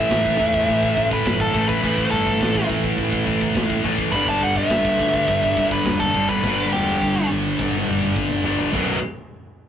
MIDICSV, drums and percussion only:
0, 0, Header, 1, 2, 480
1, 0, Start_track
1, 0, Tempo, 575264
1, 1525, Time_signature, 4, 2, 24, 8
1, 8081, End_track
2, 0, Start_track
2, 0, Title_t, "Drums"
2, 87, Note_on_c, 9, 46, 60
2, 91, Note_on_c, 9, 36, 86
2, 96, Note_on_c, 9, 38, 109
2, 170, Note_off_c, 9, 46, 0
2, 175, Note_off_c, 9, 36, 0
2, 180, Note_off_c, 9, 38, 0
2, 213, Note_on_c, 9, 36, 86
2, 296, Note_off_c, 9, 36, 0
2, 331, Note_on_c, 9, 36, 81
2, 414, Note_off_c, 9, 36, 0
2, 450, Note_on_c, 9, 36, 89
2, 533, Note_off_c, 9, 36, 0
2, 569, Note_on_c, 9, 46, 66
2, 570, Note_on_c, 9, 36, 88
2, 652, Note_off_c, 9, 46, 0
2, 653, Note_off_c, 9, 36, 0
2, 690, Note_on_c, 9, 36, 78
2, 774, Note_off_c, 9, 36, 0
2, 809, Note_on_c, 9, 36, 87
2, 893, Note_off_c, 9, 36, 0
2, 929, Note_on_c, 9, 36, 87
2, 1012, Note_off_c, 9, 36, 0
2, 1049, Note_on_c, 9, 36, 82
2, 1050, Note_on_c, 9, 46, 56
2, 1059, Note_on_c, 9, 38, 110
2, 1132, Note_off_c, 9, 36, 0
2, 1133, Note_off_c, 9, 46, 0
2, 1142, Note_off_c, 9, 38, 0
2, 1168, Note_on_c, 9, 36, 86
2, 1252, Note_off_c, 9, 36, 0
2, 1288, Note_on_c, 9, 36, 78
2, 1372, Note_off_c, 9, 36, 0
2, 1410, Note_on_c, 9, 36, 81
2, 1494, Note_off_c, 9, 36, 0
2, 1532, Note_on_c, 9, 36, 87
2, 1540, Note_on_c, 9, 46, 60
2, 1615, Note_off_c, 9, 36, 0
2, 1624, Note_off_c, 9, 46, 0
2, 1652, Note_on_c, 9, 36, 81
2, 1736, Note_off_c, 9, 36, 0
2, 1772, Note_on_c, 9, 36, 69
2, 1855, Note_off_c, 9, 36, 0
2, 1892, Note_on_c, 9, 36, 82
2, 1976, Note_off_c, 9, 36, 0
2, 2010, Note_on_c, 9, 36, 83
2, 2017, Note_on_c, 9, 46, 50
2, 2027, Note_on_c, 9, 38, 100
2, 2093, Note_off_c, 9, 36, 0
2, 2101, Note_off_c, 9, 46, 0
2, 2110, Note_off_c, 9, 38, 0
2, 2128, Note_on_c, 9, 36, 86
2, 2212, Note_off_c, 9, 36, 0
2, 2248, Note_on_c, 9, 36, 84
2, 2331, Note_off_c, 9, 36, 0
2, 2368, Note_on_c, 9, 36, 83
2, 2452, Note_off_c, 9, 36, 0
2, 2488, Note_on_c, 9, 36, 92
2, 2494, Note_on_c, 9, 46, 53
2, 2572, Note_off_c, 9, 36, 0
2, 2578, Note_off_c, 9, 46, 0
2, 2608, Note_on_c, 9, 36, 80
2, 2691, Note_off_c, 9, 36, 0
2, 2728, Note_on_c, 9, 36, 85
2, 2811, Note_off_c, 9, 36, 0
2, 2848, Note_on_c, 9, 36, 77
2, 2931, Note_off_c, 9, 36, 0
2, 2965, Note_on_c, 9, 36, 86
2, 2970, Note_on_c, 9, 46, 54
2, 2979, Note_on_c, 9, 38, 104
2, 3048, Note_off_c, 9, 36, 0
2, 3053, Note_off_c, 9, 46, 0
2, 3062, Note_off_c, 9, 38, 0
2, 3085, Note_on_c, 9, 36, 83
2, 3168, Note_off_c, 9, 36, 0
2, 3205, Note_on_c, 9, 36, 74
2, 3289, Note_off_c, 9, 36, 0
2, 3323, Note_on_c, 9, 36, 87
2, 3407, Note_off_c, 9, 36, 0
2, 3439, Note_on_c, 9, 46, 55
2, 3442, Note_on_c, 9, 36, 87
2, 3523, Note_off_c, 9, 46, 0
2, 3525, Note_off_c, 9, 36, 0
2, 3561, Note_on_c, 9, 36, 80
2, 3644, Note_off_c, 9, 36, 0
2, 3681, Note_on_c, 9, 36, 78
2, 3765, Note_off_c, 9, 36, 0
2, 3802, Note_on_c, 9, 36, 82
2, 3886, Note_off_c, 9, 36, 0
2, 3922, Note_on_c, 9, 46, 55
2, 3923, Note_on_c, 9, 36, 80
2, 3931, Note_on_c, 9, 38, 108
2, 4005, Note_off_c, 9, 46, 0
2, 4007, Note_off_c, 9, 36, 0
2, 4014, Note_off_c, 9, 38, 0
2, 4046, Note_on_c, 9, 36, 90
2, 4129, Note_off_c, 9, 36, 0
2, 4166, Note_on_c, 9, 36, 81
2, 4250, Note_off_c, 9, 36, 0
2, 4286, Note_on_c, 9, 36, 78
2, 4370, Note_off_c, 9, 36, 0
2, 4406, Note_on_c, 9, 36, 94
2, 4411, Note_on_c, 9, 46, 58
2, 4490, Note_off_c, 9, 36, 0
2, 4494, Note_off_c, 9, 46, 0
2, 4529, Note_on_c, 9, 36, 75
2, 4612, Note_off_c, 9, 36, 0
2, 4648, Note_on_c, 9, 36, 83
2, 4731, Note_off_c, 9, 36, 0
2, 4767, Note_on_c, 9, 36, 84
2, 4851, Note_off_c, 9, 36, 0
2, 4884, Note_on_c, 9, 46, 53
2, 4886, Note_on_c, 9, 36, 80
2, 4893, Note_on_c, 9, 38, 104
2, 4967, Note_off_c, 9, 46, 0
2, 4970, Note_off_c, 9, 36, 0
2, 4976, Note_off_c, 9, 38, 0
2, 5006, Note_on_c, 9, 36, 82
2, 5089, Note_off_c, 9, 36, 0
2, 5128, Note_on_c, 9, 36, 71
2, 5212, Note_off_c, 9, 36, 0
2, 5247, Note_on_c, 9, 36, 83
2, 5330, Note_off_c, 9, 36, 0
2, 5370, Note_on_c, 9, 36, 84
2, 5378, Note_on_c, 9, 38, 62
2, 5453, Note_off_c, 9, 36, 0
2, 5462, Note_off_c, 9, 38, 0
2, 5621, Note_on_c, 9, 38, 58
2, 5704, Note_off_c, 9, 38, 0
2, 5853, Note_on_c, 9, 36, 76
2, 5853, Note_on_c, 9, 48, 65
2, 5937, Note_off_c, 9, 36, 0
2, 5937, Note_off_c, 9, 48, 0
2, 6094, Note_on_c, 9, 48, 76
2, 6177, Note_off_c, 9, 48, 0
2, 6334, Note_on_c, 9, 36, 84
2, 6336, Note_on_c, 9, 47, 86
2, 6418, Note_off_c, 9, 36, 0
2, 6419, Note_off_c, 9, 47, 0
2, 6461, Note_on_c, 9, 47, 59
2, 6545, Note_off_c, 9, 47, 0
2, 6581, Note_on_c, 9, 45, 87
2, 6664, Note_off_c, 9, 45, 0
2, 6697, Note_on_c, 9, 45, 75
2, 6781, Note_off_c, 9, 45, 0
2, 6810, Note_on_c, 9, 45, 90
2, 6811, Note_on_c, 9, 36, 83
2, 6893, Note_off_c, 9, 45, 0
2, 6894, Note_off_c, 9, 36, 0
2, 6923, Note_on_c, 9, 43, 75
2, 7006, Note_off_c, 9, 43, 0
2, 7041, Note_on_c, 9, 43, 86
2, 7125, Note_off_c, 9, 43, 0
2, 7164, Note_on_c, 9, 43, 83
2, 7248, Note_off_c, 9, 43, 0
2, 7284, Note_on_c, 9, 49, 84
2, 7288, Note_on_c, 9, 36, 103
2, 7368, Note_off_c, 9, 49, 0
2, 7371, Note_off_c, 9, 36, 0
2, 8081, End_track
0, 0, End_of_file